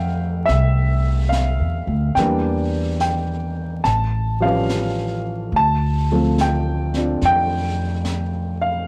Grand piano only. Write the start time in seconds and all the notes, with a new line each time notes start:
Already playing: E3 G3 A3 C4 E5 F5 F#5 G5
0.46 E5
1.29 F5
2.15 E3 G3 A#3 G5
2.20 D4
3.01 G5
3.84 A5
4.40 F3 G3 C#4 F5
4.46 E3
5.56 A5
6.12 F3 A3 C4
6.41 G5
6.96 C4 D4 F4
7.25 G5
8.61 F5